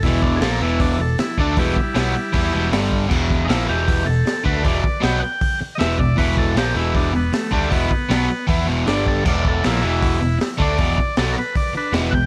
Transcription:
<<
  \new Staff \with { instrumentName = "Transistor combo organ" } { \time 4/4 \key e \minor \tempo 4 = 156 e'8 d'8 <gis' a'>8 e'8 d'8 a'8 e'8 d'8 | <g e'>2. r4 | r4 <dis' e'>8 g'4 a'4 b'8 | d''4 g''8 <fis'' g''>4 r8 <dis'' e''>8 d''8 |
b'8 a'8 g'8 e'8 d'8 b8 a8 g8 | b2 r4 d''8 a'8 | d''8 a'8 e'2 r8 d''8~ | d''4 a'8 <ais' b'>8 d''8 <d' b'>8 r8 <fis'' g''>8 | }
  \new Staff \with { instrumentName = "Overdriven electric guitar" } { \clef bass \time 4/4 \key e \minor <e, b, e>4 <ais, f ais>8 <e, b, e>4 <e, b,>8 r8 <d a d'>8 | <e, b, e>8 r8 <b, fis b>8 r8 <e b e'>8 <e, b, e>8 <g, d g>4 | <e, b, e>4 <ais, f ais>8 <e, b, e>4 <e, b,>8 r8 <d a d'>8 | <e, b, e>8 r8 <b, fis b>8 r4. <e, b, e>8 <e, b,>8 |
<e, b, e>4 <ais, f ais>8 <e, b, e>4 <e, b,>8 r8 <d a d'>8 | <e, b, e>8 r8 <b, fis b>8 r8 <e b e'>8 <e, b, e>8 <g, d g>4 | <e, b, e>4 <ais, f ais>8 <e, b, e>4 <e, b,>8 r8 <d a d'>8 | <e, b, e>8 r8 <b, fis b>8 r4. <e, b, e>8 <e, b,>8 | }
  \new Staff \with { instrumentName = "Picked electric bass" } { \clef bass \time 4/4 \key e \minor e,,4 ais,,8 e,,4 e,,8 r8 d,8 | e,,8 r8 b,,8 r8 e,8 e,,8 g,,4 | e,,4 ais,,8 e,,4 e,,8 r8 d,8 | e,,8 r8 b,,8 r4. e,,8 e,,8 |
e,,4 ais,,8 e,,4 e,,8 r8 d,8 | e,,8 r8 b,,8 r8 e,8 e,,8 g,,4 | e,,4 ais,,8 e,,4 e,,8 r8 d,8 | e,,8 r8 b,,8 r4. e,,8 e,,8 | }
  \new DrumStaff \with { instrumentName = "Drums" } \drummode { \time 4/4 <hho bd>8 bd8 <hho sn>4 <hho bd>4 <hho sn>8 bd8 | <hho bd>8 bd8 <hho sn>4 <hho bd>4 <hho sn>8 bd8 | <cymc bd>8 <bd sn>8 <hho sn>4 <hho bd>4 <hho sn>8 bd8 | <hho bd>8 bd8 <hho sn>4 <hho bd>4 <hho sn>8 bd8 |
<hho bd>8 bd8 <hho sn>4 <hho bd>4 <hho sn>8 bd8 | <hho bd>8 bd8 <hho sn>4 <hho bd>4 <hho sn>8 bd8 | <cymc bd>8 bd8 <hho sn>4 <hho bd>4 <hho sn>8 bd8 | <hho bd>8 bd8 <hho sn>4 <hho bd>4 <hho sn>8 bd8 | }
>>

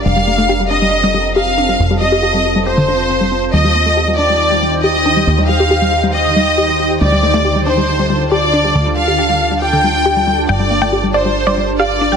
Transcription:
<<
  \new Staff \with { instrumentName = "Synth pluck" } { \time 4/4 \key d \phrygian \tempo 4 = 138 r1 | r1 | r1 | r1 |
r1 | r1 | g''8 r16 g''8 r16 d''8 r16 d''8 r16 f''8 r16 g''16 | }
  \new Staff \with { instrumentName = "Violin section" } { \time 4/4 \key d \phrygian f''4. ees''4. f''4~ | f''8 ees''4. c''2 | ees''4. d''4. ees''4~ | ees''8 f''4. ees''2 |
d''4. c''4. d''4~ | d''8 f''4. g''2 | d''4. c''4. d''4 | }
  \new Staff \with { instrumentName = "Ambient pad" } { \time 4/4 \key d \phrygian << { <c' f' a'>1~ | <c' f' a'>1 | <ees g' c'' g''>1~ | <ees g' c'' g''>1 |
<d f' a' a''>1~ | <d f' a' a''>1 | <g' bes'>1 | } \\ { r1 | r1 | ees'1~ | ees'1 |
d'1~ | d'1~ | d'1 | } >> }
  \new Staff \with { instrumentName = "Synth arpeggio sound" } { \clef bass \time 4/4 \key d \phrygian g16 g16 a16 a16 g'16 g16 d'16 g16 r16 g16 g16 r16 g'16 r16 d'16 g16 | r16 g16 g16 g'16 g'16 g16 r16 g16 g'16 d16 d'16 r16 c'16 g16 c'16 r16 | g16 g16 bes16 a16 g'16 g16 d'16 g16 r16 g16 g16 r16 g'16 r16 d'16 g16 | r16 g16 g16 g'16 g'16 g16 r16 g16 g'16 d16 g16 r16 g'16 g16 g16 r16 |
g16 g16 a16 a16 g'16 g16 d'16 g16 r16 g16 g16 r16 g'16 r16 d'16 g16 | r16 g16 g16 g'16 g'16 g16 r16 g16 g'16 d16 g16 r16 g'16 g16 g16 r16 | g16 g16 bes16 a16 g'16 g16 d'16 g16 r16 g16 g16 r16 g'16 r16 d'16 g16 | }
  \new Staff \with { instrumentName = "Analog synth bass" } { \clef bass \time 4/4 \key d \phrygian f,,1 | f,,1 | ees,1 | ees,1 |
d,1 | d,1 | g,,1 | }
>>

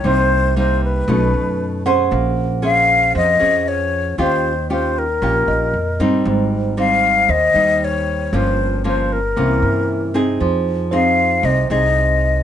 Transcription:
<<
  \new Staff \with { instrumentName = "Tine electric piano" } { \time 4/4 \key f \minor \tempo 4 = 116 r2. r8 fis''8~ | fis''8 r2. r8 | r2 r8 ees''4 r8 | r2 c''4 r4 |
r1 | r4 c''4 r2 | }
  \new Staff \with { instrumentName = "Flute" } { \time 4/4 \key f \minor c''4 c''8 b'2 r8 | r4 f''4 ees''4 des''4 | c''4 c''8 bes'2 r8 | r4 f''4 ees''4 des''4 |
c''4 c''8 bes'2 r8 | r4 f''4 ees''8 ees''4. | }
  \new Staff \with { instrumentName = "Nylon-string guitar" } { \time 4/4 \key f \minor << { <g bes ees'>4 <g bes ees'>4 <a cis' dis'>4. <cis' aes' c''>8~ | <cis' aes' c''>4 <des' aes' c''>4. <des' aes'>4. | <des' f' g'>8 r8 <des' f' g'>8 r8 <des' f' g'>4 r8 <g c' ees'>8~ | <g c' ees'>4 <g c' ees'>4 r8 <g ees'>4. |
<f bes des'>4 <f bes des'>8 r8 <e bes des'>4. <c' ees' aes'>8~ | <c' ees' aes'>4 <c' ees' aes'>4. <c' ees' aes'>4. | } \\ { c2 b,2 | bes2 f2 | ees2 bes,2 | aes,2 ees2 |
g,2 c2 | f2 c2 | } >> }
  \new Staff \with { instrumentName = "Upright bass" } { \clef bass \time 4/4 \key f \minor c,2 b,,8 fis,4. | bes,,2 f,8 f,4. | ees,2 bes,,8 bes,,8 f,8 g,8 | aes,,2 ees,8 ees,4. |
g,,2 c,8 g,4. | f,2 c,8 c,4. | }
>>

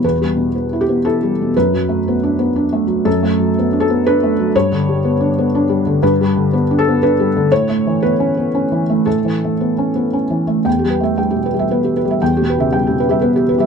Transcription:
<<
  \new Staff \with { instrumentName = "Felt piano" } { \time 3/4 \key e \dorian \tempo 4 = 119 b'4 r8 g'8 a'4 | b'2. | a'4 r8 a'8 b'4 | cis''2. |
b'4 r8 a'8 b'4 | cis''4 b'2 | a'2 r4 | g''16 g'16 b'16 e''16 g''16 g'16 b'16 e''16 b'16 g'16 b'16 e''16 |
g''16 g'16 b'16 e''16 g''16 g'16 b'16 e''16 b'16 g'16 b'16 e''16 | }
  \new Staff \with { instrumentName = "Felt piano" } { \clef bass \time 3/4 \key e \dorian \tuplet 3/2 { <e, b,>8 g8 b,8 b8 e'8 b8 e'8 g8 b,8 } | \tuplet 3/2 { fis,8 fis8 a8 b8 d'8 b8 d'8 a8 fis8 } | \tuplet 3/2 { fis,8 a8 fis8 b8 d'8 b8 d'8 a8 fis8 } | \tuplet 3/2 { g,8 d8 g8 b8 d'8 b8 d'8 g8 d8 } |
\tuplet 3/2 { g,8 g8 d8 b8 d'8 b8 d'8 g8 d8 } | \tuplet 3/2 { a,8 a8 e8 b8 cis'8 b8 cis'8 e8 a8 } | \tuplet 3/2 { a,8 e8 a8 b8 cis'8 b8 cis'8 e8 a8 } | \tuplet 3/2 { e,8 g8 a8 g8 b,8 g8 b4 g8 } |
\tuplet 3/2 { e,8 b,8 cis8 g8 b,8 g8 b4 g8 } | }
>>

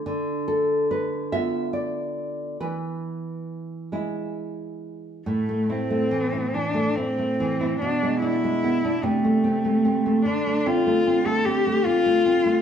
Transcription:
<<
  \new Staff \with { instrumentName = "Cello" } { \time 6/8 \key a \minor \tempo 4. = 47 r2. | r2. | a8 c'4 d'8 c'4 | d'8 e'4 a4. |
d'8 f'8. a'16 g'8 f'4 | }
  \new Staff \with { instrumentName = "Nylon-string guitar" } { \time 6/8 \key a \minor << { r8 a'8 b'8 e''8 d''4 | b'4. r4. | r2. | r2. |
r2. | } \\ { d4. <b f'>4. | e4. <gis e'>4. | a,16 a16 e'16 a16 e16 e'16 e16 a16 e'16 a16 e16 e'16 | b,16 gis16 d'16 gis16 b16 d'16 c16 a16 c'16 a16 c'16 a16 |
d16 a16 c'16 a16 c'16 a16 c'16 a16 c'16 a16 c'16 a16 | } >> }
>>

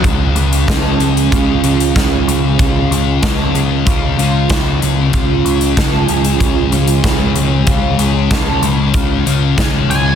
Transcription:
<<
  \new Staff \with { instrumentName = "Lead electric guitar" } { \time 4/4 \key cis \phrygian \tempo 4 = 94 r1 | r1 | r1 | r2. r8 gis''8 | }
  \new Staff \with { instrumentName = "Twelve-string acoustic guitar" } { \time 4/4 \key cis \phrygian eis'8 gis'8 a''8 gis'8 eis'8 eis'8 gis'4 | eis'8 gis'8 a''8 gis'8 eis'8 eis'8 gis'4 | eis'8 gis'8 a''8 gis'8 eis'8 eis'8 gis'4 | eis'8 gis'8 a''8 gis'8 eis'8 eis'8 gis'4 | }
  \new Staff \with { instrumentName = "Clean electric guitar" } { \clef bass \time 4/4 \key cis \phrygian <cis eis gis cis' eis'>1~ | <cis eis gis cis' eis'>1 | <cis eis gis cis' eis'>1~ | <cis eis gis cis' eis'>1 | }
  \new Staff \with { instrumentName = "Distorted electric guitar" } { \clef bass \time 4/4 \key cis \phrygian <cis gis cis'>4 <cis gis cis'>4 <cis gis cis'>8 <gis cis'>8 <cis gis cis'>4 | <cis gis cis'>4 <cis gis cis'>4 <cis gis cis'>8 <gis cis'>8 <cis gis cis'>4 | <cis gis cis'>4 <cis gis cis'>4 <cis gis cis'>8 <gis cis'>8 <cis gis cis'>4 | <cis gis cis'>4 <cis gis cis'>4 <cis gis cis'>8 <gis cis'>8 <cis gis cis'>4 | }
  \new Staff \with { instrumentName = "Picked electric bass" } { \clef bass \time 4/4 \key cis \phrygian cis,8 cis,8 cis,8 cis,8 cis,8 cis,8 cis,8 cis,8 | cis,8 cis,8 cis,8 cis,8 cis,8 cis,8 r8 cis,8 | r8 cis,8 cis,8 cis,8 cis,8 cis,8 cis,8 cis,8 | cis,8 cis,8 r8 cis,8 cis,8 cis,8 cis,8 cis,8 | }
  \new DrumStaff \with { instrumentName = "Drums" } \drummode { \time 4/4 <hh bd>8 hh16 hh16 <hh bd sn>8 hh16 hh16 <hh bd>8 hh16 hh16 <hh bd sn>8 hh8 | <hh bd>8 hh8 <hh bd sn>8 hh8 <hh bd>8 hh8 <hh bd sn>8 hh8 | <hh bd>8 hh16 hh16 <hh bd sn>8 hh16 hh16 <hh bd>8 hh16 hh16 <hh bd sn>8 hh8 | <hh bd>8 hh8 <hh bd sn>8 hh8 <hh bd>8 hh8 <hh bd sn>8 hh8 | }
>>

